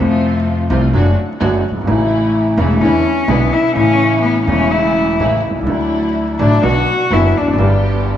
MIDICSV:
0, 0, Header, 1, 5, 480
1, 0, Start_track
1, 0, Key_signature, 2, "major"
1, 0, Tempo, 470958
1, 1912, Time_signature, 4, 2, 24, 8
1, 3832, Tempo, 476948
1, 8274, End_track
2, 0, Start_track
2, 0, Title_t, "String section"
2, 0, Program_c, 0, 48
2, 0, Note_on_c, 0, 57, 80
2, 0, Note_on_c, 0, 60, 71
2, 0, Note_on_c, 0, 65, 80
2, 676, Note_off_c, 0, 57, 0
2, 678, Note_off_c, 0, 60, 0
2, 679, Note_off_c, 0, 65, 0
2, 708, Note_on_c, 0, 57, 76
2, 710, Note_on_c, 0, 60, 68
2, 712, Note_on_c, 0, 65, 81
2, 912, Note_off_c, 0, 57, 0
2, 914, Note_off_c, 0, 60, 0
2, 915, Note_off_c, 0, 65, 0
2, 949, Note_on_c, 0, 57, 83
2, 949, Note_on_c, 0, 62, 80
2, 952, Note_on_c, 0, 66, 96
2, 1153, Note_off_c, 0, 57, 0
2, 1153, Note_off_c, 0, 62, 0
2, 1154, Note_off_c, 0, 66, 0
2, 1427, Note_on_c, 0, 57, 76
2, 1430, Note_on_c, 0, 62, 70
2, 1432, Note_on_c, 0, 66, 90
2, 1632, Note_off_c, 0, 57, 0
2, 1633, Note_off_c, 0, 62, 0
2, 1634, Note_off_c, 0, 66, 0
2, 1904, Note_on_c, 0, 57, 81
2, 1905, Note_on_c, 0, 61, 67
2, 1907, Note_on_c, 0, 64, 89
2, 2592, Note_off_c, 0, 57, 0
2, 2592, Note_off_c, 0, 61, 0
2, 2593, Note_off_c, 0, 64, 0
2, 2626, Note_on_c, 0, 61, 68
2, 2627, Note_on_c, 0, 57, 73
2, 2630, Note_on_c, 0, 64, 77
2, 2830, Note_off_c, 0, 57, 0
2, 2830, Note_off_c, 0, 61, 0
2, 2832, Note_off_c, 0, 64, 0
2, 2867, Note_on_c, 0, 62, 74
2, 2868, Note_on_c, 0, 56, 78
2, 2871, Note_on_c, 0, 64, 96
2, 3070, Note_off_c, 0, 56, 0
2, 3070, Note_off_c, 0, 62, 0
2, 3072, Note_off_c, 0, 64, 0
2, 3351, Note_on_c, 0, 56, 82
2, 3352, Note_on_c, 0, 64, 82
2, 3353, Note_on_c, 0, 62, 71
2, 3552, Note_off_c, 0, 56, 0
2, 3552, Note_off_c, 0, 64, 0
2, 3553, Note_off_c, 0, 62, 0
2, 3834, Note_on_c, 0, 57, 75
2, 3836, Note_on_c, 0, 61, 67
2, 3836, Note_on_c, 0, 64, 87
2, 4516, Note_off_c, 0, 57, 0
2, 4517, Note_off_c, 0, 61, 0
2, 4517, Note_off_c, 0, 64, 0
2, 4544, Note_on_c, 0, 57, 80
2, 4549, Note_on_c, 0, 61, 66
2, 4549, Note_on_c, 0, 64, 83
2, 5237, Note_off_c, 0, 57, 0
2, 5239, Note_off_c, 0, 61, 0
2, 5240, Note_off_c, 0, 64, 0
2, 5270, Note_on_c, 0, 57, 70
2, 5274, Note_on_c, 0, 61, 71
2, 5275, Note_on_c, 0, 64, 85
2, 5478, Note_off_c, 0, 57, 0
2, 5480, Note_off_c, 0, 61, 0
2, 5480, Note_off_c, 0, 64, 0
2, 5762, Note_on_c, 0, 54, 77
2, 5763, Note_on_c, 0, 62, 67
2, 5763, Note_on_c, 0, 64, 84
2, 6447, Note_off_c, 0, 54, 0
2, 6447, Note_off_c, 0, 62, 0
2, 6447, Note_off_c, 0, 64, 0
2, 6486, Note_on_c, 0, 54, 68
2, 6486, Note_on_c, 0, 62, 61
2, 6491, Note_on_c, 0, 64, 78
2, 6685, Note_off_c, 0, 54, 0
2, 6686, Note_off_c, 0, 62, 0
2, 6688, Note_off_c, 0, 64, 0
2, 6729, Note_on_c, 0, 59, 88
2, 6732, Note_on_c, 0, 66, 88
2, 6733, Note_on_c, 0, 62, 74
2, 6926, Note_off_c, 0, 59, 0
2, 6928, Note_off_c, 0, 62, 0
2, 6928, Note_off_c, 0, 66, 0
2, 7199, Note_on_c, 0, 59, 77
2, 7201, Note_on_c, 0, 62, 66
2, 7203, Note_on_c, 0, 66, 82
2, 7400, Note_off_c, 0, 59, 0
2, 7402, Note_off_c, 0, 62, 0
2, 7403, Note_off_c, 0, 66, 0
2, 7681, Note_on_c, 0, 59, 77
2, 7686, Note_on_c, 0, 62, 69
2, 7688, Note_on_c, 0, 67, 84
2, 8274, Note_off_c, 0, 59, 0
2, 8274, Note_off_c, 0, 62, 0
2, 8274, Note_off_c, 0, 67, 0
2, 8274, End_track
3, 0, Start_track
3, 0, Title_t, "Cello"
3, 0, Program_c, 1, 42
3, 0, Note_on_c, 1, 57, 79
3, 713, Note_off_c, 1, 57, 0
3, 2625, Note_on_c, 1, 57, 84
3, 2869, Note_on_c, 1, 61, 98
3, 2884, Note_off_c, 1, 57, 0
3, 3352, Note_on_c, 1, 59, 99
3, 3368, Note_off_c, 1, 61, 0
3, 3595, Note_on_c, 1, 64, 92
3, 3611, Note_off_c, 1, 59, 0
3, 3824, Note_off_c, 1, 64, 0
3, 3830, Note_on_c, 1, 61, 106
3, 4277, Note_off_c, 1, 61, 0
3, 4293, Note_on_c, 1, 59, 85
3, 4525, Note_off_c, 1, 59, 0
3, 4536, Note_on_c, 1, 61, 95
3, 4787, Note_on_c, 1, 64, 84
3, 4802, Note_off_c, 1, 61, 0
3, 5518, Note_off_c, 1, 64, 0
3, 6484, Note_on_c, 1, 62, 83
3, 6728, Note_on_c, 1, 66, 103
3, 6743, Note_off_c, 1, 62, 0
3, 7221, Note_on_c, 1, 64, 86
3, 7236, Note_off_c, 1, 66, 0
3, 7468, Note_on_c, 1, 62, 72
3, 7483, Note_off_c, 1, 64, 0
3, 7692, Note_off_c, 1, 62, 0
3, 8274, End_track
4, 0, Start_track
4, 0, Title_t, "Grand piano"
4, 0, Program_c, 2, 0
4, 0, Note_on_c, 2, 41, 68
4, 0, Note_on_c, 2, 48, 72
4, 0, Note_on_c, 2, 53, 76
4, 10, Note_on_c, 2, 57, 60
4, 23, Note_on_c, 2, 65, 69
4, 671, Note_off_c, 2, 48, 0
4, 682, Note_off_c, 2, 41, 0
4, 683, Note_off_c, 2, 53, 0
4, 687, Note_off_c, 2, 57, 0
4, 694, Note_off_c, 2, 65, 0
4, 715, Note_on_c, 2, 48, 86
4, 718, Note_on_c, 2, 36, 91
4, 719, Note_on_c, 2, 53, 60
4, 723, Note_on_c, 2, 57, 72
4, 725, Note_on_c, 2, 65, 74
4, 917, Note_off_c, 2, 36, 0
4, 918, Note_off_c, 2, 48, 0
4, 918, Note_off_c, 2, 53, 0
4, 920, Note_off_c, 2, 57, 0
4, 921, Note_off_c, 2, 65, 0
4, 951, Note_on_c, 2, 50, 67
4, 955, Note_on_c, 2, 54, 80
4, 958, Note_on_c, 2, 42, 78
4, 959, Note_on_c, 2, 57, 69
4, 959, Note_on_c, 2, 66, 78
4, 1153, Note_off_c, 2, 50, 0
4, 1157, Note_off_c, 2, 42, 0
4, 1158, Note_off_c, 2, 54, 0
4, 1158, Note_off_c, 2, 57, 0
4, 1158, Note_off_c, 2, 66, 0
4, 1432, Note_on_c, 2, 50, 79
4, 1433, Note_on_c, 2, 42, 88
4, 1433, Note_on_c, 2, 54, 90
4, 1437, Note_on_c, 2, 57, 70
4, 1440, Note_on_c, 2, 66, 83
4, 1634, Note_off_c, 2, 42, 0
4, 1634, Note_off_c, 2, 50, 0
4, 1637, Note_off_c, 2, 54, 0
4, 1637, Note_off_c, 2, 57, 0
4, 1638, Note_off_c, 2, 66, 0
4, 1742, Note_on_c, 2, 30, 49
4, 1795, Note_on_c, 2, 31, 63
4, 1797, Note_off_c, 2, 30, 0
4, 1854, Note_off_c, 2, 31, 0
4, 1865, Note_on_c, 2, 32, 74
4, 1888, Note_on_c, 2, 49, 70
4, 1906, Note_on_c, 2, 52, 63
4, 1909, Note_on_c, 2, 45, 85
4, 1910, Note_on_c, 2, 33, 87
4, 1915, Note_on_c, 2, 57, 62
4, 1918, Note_off_c, 2, 32, 0
4, 1933, Note_on_c, 2, 64, 78
4, 2584, Note_off_c, 2, 49, 0
4, 2593, Note_off_c, 2, 52, 0
4, 2594, Note_off_c, 2, 45, 0
4, 2595, Note_off_c, 2, 33, 0
4, 2597, Note_off_c, 2, 57, 0
4, 2606, Note_off_c, 2, 64, 0
4, 2623, Note_on_c, 2, 49, 79
4, 2626, Note_on_c, 2, 28, 83
4, 2626, Note_on_c, 2, 40, 95
4, 2626, Note_on_c, 2, 52, 68
4, 2626, Note_on_c, 2, 57, 69
4, 2629, Note_on_c, 2, 64, 79
4, 2829, Note_off_c, 2, 49, 0
4, 2830, Note_off_c, 2, 28, 0
4, 2830, Note_off_c, 2, 40, 0
4, 2830, Note_off_c, 2, 52, 0
4, 2830, Note_off_c, 2, 57, 0
4, 2831, Note_off_c, 2, 64, 0
4, 2865, Note_on_c, 2, 50, 72
4, 2866, Note_on_c, 2, 40, 78
4, 2866, Note_on_c, 2, 56, 65
4, 2866, Note_on_c, 2, 64, 72
4, 2868, Note_on_c, 2, 52, 83
4, 2870, Note_on_c, 2, 59, 60
4, 3069, Note_off_c, 2, 40, 0
4, 3069, Note_off_c, 2, 50, 0
4, 3069, Note_off_c, 2, 56, 0
4, 3070, Note_off_c, 2, 52, 0
4, 3070, Note_off_c, 2, 64, 0
4, 3071, Note_off_c, 2, 59, 0
4, 3343, Note_on_c, 2, 50, 77
4, 3345, Note_on_c, 2, 35, 82
4, 3346, Note_on_c, 2, 59, 63
4, 3346, Note_on_c, 2, 64, 83
4, 3347, Note_on_c, 2, 56, 64
4, 3348, Note_on_c, 2, 47, 84
4, 3548, Note_off_c, 2, 50, 0
4, 3549, Note_off_c, 2, 35, 0
4, 3550, Note_off_c, 2, 56, 0
4, 3550, Note_off_c, 2, 59, 0
4, 3550, Note_off_c, 2, 64, 0
4, 3551, Note_off_c, 2, 47, 0
4, 3807, Note_on_c, 2, 49, 73
4, 3823, Note_on_c, 2, 33, 71
4, 3823, Note_on_c, 2, 52, 59
4, 3826, Note_on_c, 2, 45, 84
4, 3835, Note_on_c, 2, 57, 60
4, 3846, Note_on_c, 2, 64, 73
4, 4503, Note_off_c, 2, 49, 0
4, 4511, Note_off_c, 2, 33, 0
4, 4511, Note_off_c, 2, 52, 0
4, 4512, Note_off_c, 2, 45, 0
4, 4517, Note_off_c, 2, 57, 0
4, 4522, Note_off_c, 2, 64, 0
4, 4536, Note_on_c, 2, 49, 68
4, 4550, Note_on_c, 2, 52, 60
4, 4552, Note_on_c, 2, 28, 88
4, 4554, Note_on_c, 2, 40, 86
4, 4557, Note_on_c, 2, 57, 63
4, 4575, Note_on_c, 2, 64, 76
4, 5233, Note_off_c, 2, 49, 0
4, 5240, Note_off_c, 2, 52, 0
4, 5241, Note_off_c, 2, 28, 0
4, 5242, Note_off_c, 2, 40, 0
4, 5243, Note_off_c, 2, 57, 0
4, 5253, Note_off_c, 2, 64, 0
4, 5281, Note_on_c, 2, 49, 66
4, 5283, Note_on_c, 2, 52, 64
4, 5284, Note_on_c, 2, 45, 86
4, 5284, Note_on_c, 2, 57, 68
4, 5285, Note_on_c, 2, 33, 74
4, 5289, Note_on_c, 2, 64, 81
4, 5483, Note_off_c, 2, 49, 0
4, 5484, Note_off_c, 2, 52, 0
4, 5485, Note_off_c, 2, 33, 0
4, 5485, Note_off_c, 2, 45, 0
4, 5485, Note_off_c, 2, 57, 0
4, 5487, Note_off_c, 2, 64, 0
4, 5587, Note_on_c, 2, 35, 45
4, 5645, Note_off_c, 2, 35, 0
4, 5645, Note_on_c, 2, 36, 62
4, 5704, Note_off_c, 2, 36, 0
4, 5713, Note_on_c, 2, 37, 71
4, 5750, Note_on_c, 2, 50, 79
4, 5761, Note_on_c, 2, 54, 58
4, 5766, Note_on_c, 2, 38, 80
4, 5768, Note_off_c, 2, 37, 0
4, 5774, Note_on_c, 2, 57, 59
4, 5785, Note_on_c, 2, 64, 73
4, 6447, Note_off_c, 2, 54, 0
4, 6448, Note_off_c, 2, 50, 0
4, 6449, Note_off_c, 2, 38, 0
4, 6453, Note_off_c, 2, 57, 0
4, 6459, Note_off_c, 2, 64, 0
4, 6483, Note_on_c, 2, 50, 72
4, 6483, Note_on_c, 2, 54, 69
4, 6483, Note_on_c, 2, 57, 66
4, 6486, Note_on_c, 2, 33, 84
4, 6486, Note_on_c, 2, 45, 89
4, 6488, Note_on_c, 2, 64, 78
4, 6684, Note_off_c, 2, 50, 0
4, 6684, Note_off_c, 2, 54, 0
4, 6684, Note_off_c, 2, 57, 0
4, 6686, Note_off_c, 2, 33, 0
4, 6686, Note_off_c, 2, 45, 0
4, 6686, Note_off_c, 2, 64, 0
4, 6717, Note_on_c, 2, 47, 84
4, 6717, Note_on_c, 2, 50, 64
4, 6718, Note_on_c, 2, 35, 74
4, 6720, Note_on_c, 2, 54, 60
4, 6721, Note_on_c, 2, 59, 62
4, 6725, Note_on_c, 2, 66, 72
4, 6920, Note_off_c, 2, 47, 0
4, 6920, Note_off_c, 2, 50, 0
4, 6921, Note_off_c, 2, 35, 0
4, 6922, Note_off_c, 2, 54, 0
4, 6922, Note_off_c, 2, 59, 0
4, 6924, Note_off_c, 2, 66, 0
4, 7206, Note_on_c, 2, 50, 69
4, 7208, Note_on_c, 2, 30, 87
4, 7209, Note_on_c, 2, 42, 79
4, 7209, Note_on_c, 2, 54, 69
4, 7211, Note_on_c, 2, 59, 69
4, 7212, Note_on_c, 2, 66, 85
4, 7404, Note_off_c, 2, 50, 0
4, 7405, Note_off_c, 2, 30, 0
4, 7406, Note_off_c, 2, 42, 0
4, 7406, Note_off_c, 2, 54, 0
4, 7407, Note_off_c, 2, 59, 0
4, 7407, Note_off_c, 2, 66, 0
4, 7510, Note_on_c, 2, 40, 47
4, 7564, Note_off_c, 2, 40, 0
4, 7573, Note_on_c, 2, 41, 61
4, 7625, Note_off_c, 2, 41, 0
4, 7632, Note_on_c, 2, 42, 80
4, 7667, Note_on_c, 2, 50, 72
4, 7683, Note_on_c, 2, 55, 56
4, 7685, Note_off_c, 2, 42, 0
4, 7688, Note_on_c, 2, 43, 89
4, 7689, Note_on_c, 2, 31, 89
4, 7694, Note_on_c, 2, 59, 69
4, 7710, Note_on_c, 2, 67, 71
4, 8274, Note_off_c, 2, 31, 0
4, 8274, Note_off_c, 2, 43, 0
4, 8274, Note_off_c, 2, 50, 0
4, 8274, Note_off_c, 2, 55, 0
4, 8274, Note_off_c, 2, 59, 0
4, 8274, Note_off_c, 2, 67, 0
4, 8274, End_track
5, 0, Start_track
5, 0, Title_t, "Upright bass"
5, 0, Program_c, 3, 32
5, 0, Note_on_c, 3, 41, 94
5, 680, Note_off_c, 3, 41, 0
5, 714, Note_on_c, 3, 36, 101
5, 916, Note_off_c, 3, 36, 0
5, 952, Note_on_c, 3, 30, 88
5, 1154, Note_off_c, 3, 30, 0
5, 1434, Note_on_c, 3, 30, 100
5, 1635, Note_off_c, 3, 30, 0
5, 1734, Note_on_c, 3, 30, 51
5, 1785, Note_off_c, 3, 30, 0
5, 1792, Note_on_c, 3, 31, 51
5, 1842, Note_off_c, 3, 31, 0
5, 1848, Note_on_c, 3, 32, 60
5, 1902, Note_off_c, 3, 32, 0
5, 1908, Note_on_c, 3, 33, 96
5, 2594, Note_off_c, 3, 33, 0
5, 2624, Note_on_c, 3, 28, 102
5, 2829, Note_off_c, 3, 28, 0
5, 2865, Note_on_c, 3, 40, 86
5, 3069, Note_off_c, 3, 40, 0
5, 3341, Note_on_c, 3, 35, 101
5, 3547, Note_off_c, 3, 35, 0
5, 3828, Note_on_c, 3, 33, 86
5, 4513, Note_off_c, 3, 33, 0
5, 4549, Note_on_c, 3, 28, 92
5, 5239, Note_off_c, 3, 28, 0
5, 5275, Note_on_c, 3, 33, 85
5, 5480, Note_off_c, 3, 33, 0
5, 5576, Note_on_c, 3, 35, 46
5, 5633, Note_off_c, 3, 35, 0
5, 5639, Note_on_c, 3, 36, 50
5, 5690, Note_off_c, 3, 36, 0
5, 5696, Note_on_c, 3, 37, 58
5, 5744, Note_off_c, 3, 37, 0
5, 5750, Note_on_c, 3, 38, 89
5, 6441, Note_off_c, 3, 38, 0
5, 6481, Note_on_c, 3, 33, 104
5, 6683, Note_off_c, 3, 33, 0
5, 6719, Note_on_c, 3, 35, 88
5, 6921, Note_off_c, 3, 35, 0
5, 7198, Note_on_c, 3, 30, 98
5, 7400, Note_off_c, 3, 30, 0
5, 7500, Note_on_c, 3, 28, 50
5, 7555, Note_off_c, 3, 28, 0
5, 7561, Note_on_c, 3, 29, 57
5, 7612, Note_off_c, 3, 29, 0
5, 7618, Note_on_c, 3, 30, 60
5, 7673, Note_off_c, 3, 30, 0
5, 7679, Note_on_c, 3, 31, 95
5, 8274, Note_off_c, 3, 31, 0
5, 8274, End_track
0, 0, End_of_file